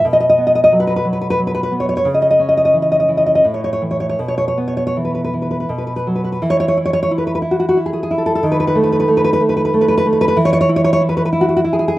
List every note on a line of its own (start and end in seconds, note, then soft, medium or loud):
0.05 2.03 B2 medium
0.13 0.19 D#5 medium
0.20 0.28 D#5 medium
0.30 0.39 D#5 loud
0.38 1.40 B3 medium
0.47 0.54 D#5 medium
0.55 0.63 D#5 medium
0.64 0.73 D#5 medium
0.72 1.04 F#3 medium
0.80 0.86 B4 medium
0.87 0.95 B4 medium
0.96 1.06 B4 medium
1.05 1.37 F#3 medium
1.13 1.20 B4 medium
1.21 1.29 B4 medium
1.30 1.40 B4 medium
1.38 2.03 F#3 medium
1.47 1.53 B4 medium
1.55 1.62 B4 medium
1.63 1.73 B4 medium
1.72 2.06 B3 soft
1.80 1.88 C#5 medium
1.89 1.96 C#5 medium
1.97 2.06 C#5 medium
2.05 3.41 C#3 medium
2.14 2.21 D#5 medium
2.22 2.29 D#5 medium
2.31 2.40 D#5 medium
2.39 3.45 C#4 medium
2.49 2.56 D#5 medium
2.57 2.64 D#5 medium
2.65 2.75 D#5 medium
2.74 3.07 E3 medium
2.82 2.90 D#5 medium
2.92 2.99 D#5 medium
3.00 3.10 D#5 medium
3.08 3.44 E3 soft
3.17 3.25 D#5 medium
3.26 3.34 D#5 medium
3.35 3.45 D#5 medium
3.44 4.16 A2 medium
3.54 3.63 C#5 medium
3.64 3.72 C#5 medium
3.73 3.82 C#5 medium
3.81 4.15 E3 soft
3.91 3.99 C#5 medium
4.00 4.08 C#5 medium
4.09 4.19 C#5 medium
4.19 5.65 B2 medium
4.28 4.36 C#5 medium
4.38 4.47 C#5 medium
4.48 4.57 C#5 medium
4.58 5.69 B3 medium
4.68 4.76 C#5 medium
4.77 4.86 C#5 medium
4.87 4.96 C#5 medium
4.97 5.32 E3 medium
5.05 5.13 B4 medium
5.15 5.23 B4 medium
5.24 5.33 B4 medium
5.33 5.70 E3 soft
5.42 5.50 B4 medium
5.51 5.59 B4 medium
5.60 5.69 B4 medium
5.69 6.41 B2 medium
5.78 5.86 B4 medium
5.87 5.95 B4 medium
5.96 6.06 B4 medium
6.07 6.39 F#3 soft
6.16 6.23 B4 medium
6.24 6.31 B4 medium
6.32 6.42 B4 medium
6.42 8.40 E3 medium
6.50 6.59 C#5 loud
6.60 6.67 C#5 loud
6.68 6.77 C#5 loud
6.77 7.10 E4 medium
6.86 6.92 C#5 loud
6.93 7.01 C#5 loud
7.03 7.11 C#5 loud
7.11 7.41 E4 medium
7.18 7.26 B4 medium
7.27 7.34 B4 medium
7.35 7.41 B4 medium
7.42 7.76 E4 medium
7.51 7.58 F#4 medium
7.60 7.67 F#4 medium
7.69 7.77 F#4 medium
7.77 8.10 E4 medium
7.86 7.92 G#4 medium
7.93 8.02 G#4 medium
8.03 8.11 G#4 medium
8.11 8.44 E4 medium
8.18 8.25 A4 medium
8.26 8.34 A4 medium
8.35 8.44 A4 loud
8.43 10.33 D#3 medium
8.52 8.59 B4 medium
8.60 8.66 B4 medium
8.67 8.76 B4 medium
8.75 9.07 A3 medium
8.83 8.91 B4 medium
8.92 8.98 B4 loud
9.00 9.09 B4 loud
9.08 9.39 A3 medium
9.17 9.23 B4 medium
9.24 9.32 B4 loud
9.33 9.41 B4 loud
9.40 9.73 A3 medium
9.49 9.56 B4 medium
9.57 9.64 B4 medium
9.65 9.73 B4 loud
9.74 10.05 A3 medium
9.81 9.87 B4 medium
9.88 9.96 B4 loud
9.98 10.06 B4 loud
10.06 10.38 A3 medium
10.13 10.20 B4 medium
10.21 10.27 B4 loud
10.28 10.37 B4 loud
10.37 11.99 E3 medium
10.45 10.52 C#5 loud
10.53 10.60 C#5 loud
10.61 10.69 C#5 loud
10.69 11.00 E4 medium
10.76 10.83 C#5 loud
10.84 10.92 C#5 loud
10.93 11.01 C#5 loud
11.01 11.31 E4 medium
11.09 11.16 B4 medium
11.17 11.24 B4 medium
11.25 11.32 B4 medium
11.33 11.63 E4 medium
11.41 11.47 F#4 medium
11.49 11.55 F#4 medium
11.57 11.64 F#4 loud
11.64 11.96 E4 medium
11.73 11.78 G#4 medium
11.79 11.87 G#4 medium
11.88 11.97 G#4 loud